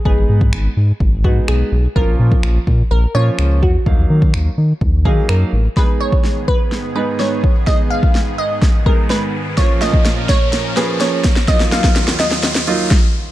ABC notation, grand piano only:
X:1
M:4/4
L:1/16
Q:1/4=126
K:G#dor
V:1 name="Grand piano"
[G,B,DB]4- [G,B,DB] z4 z [G,B,DB]4 z2 | [E,A,CE]4- [E,A,CE] z4 z [E,A,CE]4 z2 | [F,A,De]4- [F,A,De] z4 z [F,A,De]4 z2 | [G,B,DG]4- [G,B,DG] z4 z [G,B,DB]4 z2 |
[G,B,DG]4- [G,B,DG] z4 z [G,B,DG]4 z2 | [E,A,CE]4- [E,A,CE] z4 z [E,A,CG]4 z2 | [F,A,DE]4- [F,A,DE] z4 z [F,A,DE]2 z4 |]